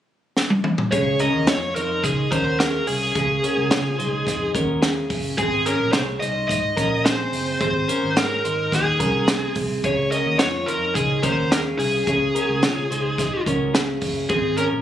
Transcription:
0.37 snare
0.50 high tom
0.64 mid tom
0.78 floor tom
0.91 fingered electric bass C#2, clean electric guitar C#4 G#4, lead electric guitar C#5, kick, closed hi-hat
1.19 clean electric guitar C#4 A#4, lead electric guitar D#5, closed hi-hat
1.34 fingered electric bass D#2
1.47 fingered electric bass F2, clean electric guitar F4 C#5, lead electric guitar C#5, snare, closed hi-hat
1.75 fingered electric bass F2, clean electric guitar D#4 C5, lead electric guitar A#4, closed hi-hat
2.03 fingered electric bass C#3, lead electric guitar G#4, kick, closed hi-hat
2.31 fingered electric bass D#2, clean electric guitar C#4 A#4, lead electric guitar C5, kick, closed hi-hat
2.60 clean electric guitar C#4 G#4, lead electric guitar A#4, snare, closed hi-hat
2.87 fingered electric bass C2, lead electric guitar G#4, open hi-hat
3.15 fingered electric bass C#2, clean electric guitar C#4 G#4, kick, closed hi-hat
3.43 clean electric guitar C#4 A#4, closed hi-hat
3.57 fingered electric bass C#2
3.71 fingered electric bass C#3, clean electric guitar F4 C#5, snare, closed hi-hat
3.99 fingered electric bass C#2, clean electric guitar D#4 C5, closed hi-hat
4.27 fingered electric bass F2, kick, snare, closed hi-hat
4.55 fingered electric bass D#2, clean electric guitar C#4 A#4, kick, closed hi-hat
4.82 clean electric guitar C#4 G#4, snare, closed hi-hat
5.10 fingered electric bass F#1, kick, open hi-hat
5.38 fingered electric bass G#1, clean electric guitar C4 G#4, lead electric guitar G#4, kick, closed hi-hat
5.66 clean electric guitar C#4 A#4, lead electric guitar A#4, closed hi-hat
5.80 fingered electric bass A#1
5.92 fingered electric bass C2, clean electric guitar G#4 C#5, lead electric guitar C5, snare, closed hi-hat
6.20 fingered electric bass C2, clean electric guitar D#4 C5, lead electric guitar D#5, closed hi-hat
6.48 fingered electric bass G#2, lead electric guitar D#5, kick, closed hi-hat
6.77 fingered electric bass A#1, clean electric guitar C#4 A#4, kick, closed hi-hat
7.05 clean electric guitar C4 G#4, lead electric guitar C5, snare, closed hi-hat
7.33 fingered electric bass F#1, open hi-hat
7.61 fingered electric bass G#1, clean electric guitar C4 G#4, lead electric guitar C5, kick, closed hi-hat
7.88 clean electric guitar C#4 A#4, closed hi-hat
8.03 fingered electric bass G#1
8.17 fingered electric bass G#2, clean electric guitar G#4 C#5, lead electric guitar A#4, snare, closed hi-hat
8.44 fingered electric bass G#1, clean electric guitar D#4 C5, closed hi-hat
8.72 fingered electric bass D#2, lead electric guitar G#4, kick, snare, closed hi-hat
9.00 fingered electric bass C2, clean electric guitar C#4 A#4, kick, closed hi-hat
9.28 clean electric guitar C4 G#4, snare, closed hi-hat
9.55 fingered electric bass C2, kick, open hi-hat
9.84 fingered electric bass C#2, clean electric guitar C#4 G#4, lead electric guitar C#5, kick, closed hi-hat
10.11 clean electric guitar C#4 A#4, lead electric guitar D#5, closed hi-hat
10.26 fingered electric bass D#2
10.39 fingered electric bass F2, clean electric guitar F4 C#5, lead electric guitar C#5, snare, closed hi-hat
10.66 fingered electric bass F2, clean electric guitar D#4 C5, lead electric guitar A#4, closed hi-hat
10.95 fingered electric bass C#3, lead electric guitar G#4, kick, closed hi-hat
11.22 fingered electric bass D#2, clean electric guitar C#4 A#4, lead electric guitar C5, kick, closed hi-hat
11.51 clean electric guitar C#4 G#4, lead electric guitar A#4, snare, closed hi-hat
11.79 fingered electric bass C2, lead electric guitar G#4, open hi-hat
12.07 fingered electric bass C#2, clean electric guitar C#4 G#4, kick, closed hi-hat
12.35 clean electric guitar C#4 A#4, closed hi-hat
12.49 fingered electric bass C#2
12.63 fingered electric bass C#3, clean electric guitar F4 C#5, snare, closed hi-hat
12.91 fingered electric bass C#2, clean electric guitar D#4 C5, closed hi-hat
13.18 kick, snare, closed hi-hat
13.46 fingered electric bass C#2, clean electric guitar C#4 A#4, kick, closed hi-hat
13.74 clean electric guitar C#4 G#4, snare, closed hi-hat
14.01 fingered electric bass F#1, kick, open hi-hat
14.29 fingered electric bass G#1, clean electric guitar C4 G#4, lead electric guitar G#4, kick, closed hi-hat
14.57 clean electric guitar C#4 A#4, lead electric guitar A#4, closed hi-hat
14.72 fingered electric bass A#1

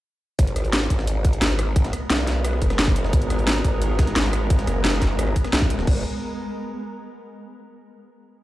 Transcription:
0.39 wobble bass G#1, synth drone G#3 B3 A#4, kick, closed hi-hat
0.47 closed hi-hat
0.56 cross-stick, closed hi-hat
0.65 closed hi-hat
0.73 snare, closed hi-hat
0.90 wobble bass G#1, kick, closed hi-hat
0.99 snare
1.07 closed hi-hat
1.25 kick, closed hi-hat
1.33 closed hi-hat
1.42 wobble bass G#1, snare, closed hi-hat
1.50 snare
1.59 cross-stick, closed hi-hat
1.76 kick, closed hi-hat
1.84 snare, closed hi-hat
1.93 cross-stick, closed hi-hat
2.10 wobble bass B1, snare, closed hi-hat
2.19 snare
2.27 snare, closed hi-hat
2.44 cross-stick, closed hi-hat
2.53 cross-stick
2.62 wobble bass F#1, kick, closed hi-hat
2.70 cross-stick, snare, closed hi-hat
2.79 snare, closed hi-hat, open hi-hat
2.87 kick, snare
2.96 closed hi-hat
3.05 snare
3.13 wobble bass G#1, kick, closed hi-hat
3.22 closed hi-hat
3.30 cross-stick, closed hi-hat
3.39 closed hi-hat
3.47 snare, closed hi-hat
3.64 wobble bass G#1, kick, closed hi-hat
3.82 closed hi-hat
3.99 kick, snare, closed hi-hat
4.07 snare, closed hi-hat
4.16 wobble bass G#1, snare, closed hi-hat
4.25 snare
4.33 cross-stick, closed hi-hat
4.50 kick, closed hi-hat
4.59 snare, closed hi-hat
4.67 wobble bass F#1, cross-stick, closed hi-hat
4.85 snare, closed hi-hat
4.93 snare
5.02 kick, snare, closed hi-hat
5.19 wobble bass G#1, cross-stick, closed hi-hat
5.27 cross-stick
5.36 kick, closed hi-hat
5.44 cross-stick, snare, closed hi-hat
5.53 wobble bass B1, snare, closed hi-hat, open hi-hat
5.62 kick, snare
5.70 closed hi-hat
5.79 snare
5.87 wobble bass G#1, kick, crash

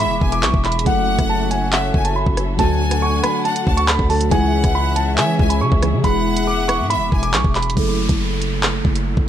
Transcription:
Already playing: synth keys B2 E3 G#3 E4 G#4, string section B3 E4 G#4 E5
0.00 violin section E5, grand piano B5
0.05 808-style bass E1
0.21 808-style bass E1, violin section G#5, kick
0.32 grand piano D6, closed hi-hat
0.43 808-style bass B1, grand piano C#6, clap, closed hi-hat
0.54 808-style bass E1, kick
0.65 grand piano B5, clap, closed hi-hat
0.72 closed hi-hat
0.79 closed hi-hat
0.84 808-style bass F#1, synth keys C#3 F#3 A3 E4 A4, string section C#4 F#4 A4, violin section F#5, grand piano F#5, kick, closed hi-hat
1.19 808-style bass F#1, kick, cross-stick, closed hi-hat
1.29 grand piano A5
1.51 grand piano G#5, closed hi-hat
1.72 violin section E5, grand piano F#5, clap, closed hi-hat
1.94 808-style bass F#1, violin section G#5, kick
2.04 grand piano A5, closed hi-hat
2.16 grand piano B5
2.26 808-style bass F#1, kick
2.37 cross-stick, closed hi-hat
2.57 808-style bass D2, synth keys D3 F#3 A3 F#4 A4, string section D4 F#5, violin section G#5, grand piano A5, kick, closed hi-hat
2.91 cross-stick, closed hi-hat
3.02 grand piano C#6
3.23 grand piano B5, cross-stick, closed hi-hat
3.45 violin section F#5, grand piano A5, closed hi-hat
3.56 closed hi-hat
3.67 808-style bass D2, violin section A5, kick
3.77 grand piano C#6, closed hi-hat
3.88 grand piano B5, clap, closed hi-hat
3.99 808-style bass D2, kick
4.09 synth keys D3 F#3 A3 F#4 A4, grand piano A5, open hi-hat
4.21 closed hi-hat
4.30 808-style bass C#2, synth keys C#3 E3 G#3 E4 G#4, string section C#4 E4 G#4 E5, violin section F#5, grand piano G#5, kick, closed hi-hat
4.64 808-style bass C#2, kick, cross-stick, closed hi-hat
4.75 grand piano B5
4.96 grand piano A5, closed hi-hat
5.18 808-style bass E3, violin section E5, grand piano G#5, clap, closed hi-hat
5.39 808-style bass C#2, violin section G#5, kick
5.50 grand piano B5, closed hi-hat
5.61 808-style bass C#3, grand piano C#6
5.72 808-style bass C#2, kick
5.82 synth keys C#3 E3 G#3 E4 G#4, cross-stick, closed hi-hat
5.93 808-style bass C#3
6.02 808-style bass E1, synth keys B2 E3 G#3 E4 G#4, string section B3 E5, violin section F#5, grand piano B5, kick, closed hi-hat
6.37 closed hi-hat
6.47 grand piano D6
6.68 grand piano C#6, cross-stick, closed hi-hat
6.80 808-style bass G#2
6.90 violin section E5, grand piano B5, closed hi-hat
6.96 808-style bass E1
7.12 808-style bass E1, violin section G#5, kick
7.23 grand piano D6, closed hi-hat
7.33 808-style bass B1, grand piano C#6, clap, closed hi-hat
7.44 808-style bass E1, kick
7.55 grand piano B5, clap, closed hi-hat
7.62 closed hi-hat
7.70 closed hi-hat
7.75 808-style bass F#1, synth keys C#3 F#3 A3 E4 A4, kick, closed hi-hat, downlifter
8.09 808-style bass F#1, kick, closed hi-hat
8.42 closed hi-hat
8.63 clap, closed hi-hat
8.85 808-style bass F#1, kick
8.95 closed hi-hat
9.17 808-style bass F#1, kick

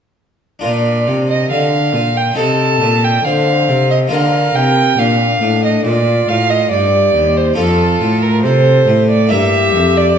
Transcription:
0.59 harpsichord D4 F4 A#4
0.64 cello A#2, harpsichord A#2, violin D5
1.07 harpsichord C3, cello C3
1.30 violin D#5
1.51 cello D3, harpsichord D3, violin F5
1.94 harpsichord A#2, cello A#2
2.17 violin G5
2.33 cello C3, harpsichord C4 D#4 A4, flute A4
2.38 harpsichord C3, violin A5
2.81 cello A#2, harpsichord A#2
3.04 violin G5
3.24 cello D3, harpsichord D3, flute C5, violin F5
3.69 cello C3, harpsichord C3
3.91 violin D#5
4.07 harpsichord A#3 F4 A#4, violin F5
4.12 cello D3, harpsichord D3, flute A#4
4.55 cello C3, harpsichord C3, violin G5
4.98 harpsichord A#2, cello A#2, flute D4, violin F5
5.41 harpsichord A2, cello A2
5.64 violin D#5
5.85 harpsichord A#2, cello A#2, flute F4, violin D5
6.28 cello A2, harpsichord A2, violin F5
6.50 violin D#5
6.71 harpsichord G2, cello G2, flute G4, violin D5
7.15 harpsichord D#2, cello D#2
7.37 violin C5
7.54 harpsichord C4 F4 A4, flute F4, violin A4
7.58 harpsichord F2, cello F2
8.02 harpsichord A2, cello A2
8.23 violin A#4
8.43 cello C3, harpsichord C3, flute A4, violin C5
8.87 cello A2, harpsichord A2
9.10 violin D5
9.27 cello G2, harpsichord A#3 E4 A#4, flute G4, violin E5
9.31 harpsichord G2
9.74 cello F2, harpsichord F2
9.97 violin D5

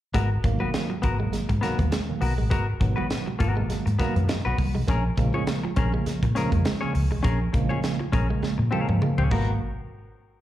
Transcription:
0.14 fingered electric bass G#1, clean electric guitar G#3 B3 F#4 A#4, kick, closed hi-hat
0.44 fingered electric bass G#1, tine electric piano B2 D#3 F#3 A#3, muted clean electric guitar stroke, kick, closed hi-hat, muted conga
0.60 clean electric guitar F#3 B3 F#4 B4, high conga
0.74 snare, closed hi-hat
0.90 clean electric guitar F#3, muted clean electric guitar stroke, high conga
1.02 fingered electric bass G#1, tine electric piano F#3 A#3, clean electric guitar B3 F#4 A#4, muted clean electric guitar stroke, kick, closed hi-hat, muted conga, high conga, low conga
1.19 tine electric piano B2 D#3 F#3 A#3, clean electric guitar G#3, muted clean electric guitar stroke
1.32 clean electric guitar G#3, muted fingered electric bass stroke, snare, closed hi-hat, muted conga
1.49 fingered electric bass G#2, muted clean electric guitar stroke, kick, closed hi-hat
1.61 tine electric piano B2 D#3 F#3 A#3, clean electric guitar B3 F#4 A#4, snare, closed hi-hat, muted conga, high conga
1.78 fingered electric bass D#2, clean electric guitar B3, kick, closed hi-hat, high conga
1.91 clean electric guitar G#3, muted clean electric guitar stroke, snare, closed hi-hat, high conga
2.09 tine electric piano B2 D#3 F#3 A#3, muted clean electric guitar stroke
2.21 fingered electric bass B1, clean electric guitar B3 F#4 A#4, open hi-hat
2.37 fingered electric bass A1, clean electric guitar G#3, muted clean electric guitar stroke, low conga
2.50 fingered electric bass G#1, clean electric guitar G#3 B3 F#4 A#4, kick, closed hi-hat
2.80 fingered electric bass G#1, tine electric piano B2 D#3 F#3 B3, muted clean electric guitar stroke, kick, closed hi-hat
2.96 clean electric guitar F#3 B3 F#4 B4, high conga
3.10 snare, closed hi-hat, muted conga
3.26 clean electric guitar F#3, muted clean electric guitar stroke, high conga
3.39 fingered electric bass G#1, tine electric piano F#3 A#3, clean electric guitar B3 F#4 A#4, muted clean electric guitar stroke, kick, closed hi-hat, muted conga, high conga, low conga
3.56 tine electric piano B2 D#3 F#3 A#3, clean electric guitar G#3, muted clean electric guitar stroke
3.70 clean electric guitar G#3, muted fingered electric bass stroke, snare, closed hi-hat
3.86 fingered electric bass G#2, muted clean electric guitar stroke, closed hi-hat
3.99 tine electric piano B2 D#3 F#3 A#3, clean electric guitar B3 F#4 A#4, kick, snare, closed hi-hat, muted conga, high conga
4.16 fingered electric bass F#2, clean electric guitar B3, muted clean electric guitar stroke, closed hi-hat, high conga
4.28 clean electric guitar G#3, muted clean electric guitar stroke, snare, closed hi-hat, high conga
4.45 fingered electric bass B1, tine electric piano B2 D#3 F#3 A#3, clean electric guitar B3 F#4 B4, muted clean electric guitar stroke
4.58 fingered electric bass C2, muted clean electric guitar stroke, kick, open hi-hat
4.75 fingered electric bass B1, clean electric guitar G#3, muted clean electric guitar stroke, low conga
4.88 fingered electric bass A#1, clean electric guitar A#3 C#4 G#4 A#4, kick, closed hi-hat, muted conga
5.17 fingered electric bass A#1, tine electric piano C#3 F3 G#3 A#3, muted clean electric guitar stroke, kick, closed hi-hat
5.34 clean electric guitar F3 C#4 G#4 C#5, high conga
5.46 snare, closed hi-hat, muted conga
5.63 clean electric guitar F3, muted clean electric guitar stroke, high conga
5.76 fingered electric bass A#1, clean electric guitar C#4 G#4 A#4, muted clean electric guitar stroke, kick, closed hi-hat, muted conga, high conga, low conga
5.94 tine electric piano C#3 F3 G#3 A#3, clean electric guitar G#3
6.06 clean electric guitar G#3, muted fingered electric bass stroke, snare, closed hi-hat
6.23 fingered electric bass A#2, muted clean electric guitar stroke, kick, closed hi-hat
6.35 tine electric piano C#3 F3 G#3 A#3, clean electric guitar C#4 G#4 A#4, snare, closed hi-hat, muted conga, high conga
6.52 fingered electric bass F2, clean electric guitar A#3, muted clean electric guitar stroke, kick, closed hi-hat, high conga
6.65 clean electric guitar G#3, muted clean electric guitar stroke, snare, closed hi-hat, muted conga, high conga
6.81 tine electric piano C#3 F3 G#3 A#3, clean electric guitar C#4 G#4 C#5, muted clean electric guitar stroke
6.94 fingered electric bass C#2, muted clean electric guitar stroke, open hi-hat, muted conga
7.11 fingered electric bass B1, tine electric piano G#3 A#3, clean electric guitar G#3, muted clean electric guitar stroke, low conga
7.23 fingered electric bass A#1, clean electric guitar A#3 C#4 G#4 A#4, kick, closed hi-hat
7.53 fingered electric bass A#1, tine electric piano C#3 F3 G#3 A#3, muted clean electric guitar stroke, kick, closed hi-hat, muted conga
7.69 clean electric guitar F3 C#4 G#4 C#5, high conga
7.83 snare, closed hi-hat, muted conga
7.99 clean electric guitar F3, muted clean electric guitar stroke, high conga
8.12 fingered electric bass A#1, clean electric guitar C#4 G#4 A#4, muted clean electric guitar stroke, kick, closed hi-hat, high conga, low conga
8.28 tine electric piano C#3 F3 G#3 A#3, clean electric guitar G#3, muted clean electric guitar stroke
8.42 clean electric guitar G#3, muted fingered electric bass stroke, snare, muted conga
8.58 fingered electric bass A#2, muted clean electric guitar stroke
8.71 tine electric piano C#3 F3 G#3 A#3, clean electric guitar C#4 G#4 A#4, high tom, high conga
8.88 fingered electric bass G#2, clean electric guitar A#3, muted clean electric guitar stroke, high tom, high conga
9.02 tine electric piano F3 A#3, clean electric guitar G#3, muted clean electric guitar stroke, mid tom, high conga
9.18 fingered electric bass C#2, clean electric guitar C#4 G#4 C#5, muted clean electric guitar stroke, mid tom
9.31 fingered electric bass G#1, tine electric piano B2 D#3 F#3 A#3, clean electric guitar G#3 B3 F#4 A#4, kick, crash, high conga

